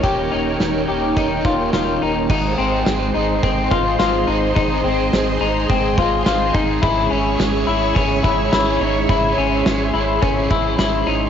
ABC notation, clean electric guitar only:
X:1
M:4/4
L:1/8
Q:1/4=106
K:Ab
V:1 name="Clean electric guitar"
G E2 G E F F E | E C2 E C F F E | E C2 E C F F E | _F D2 F D F F E |
_F D2 F D F F E |]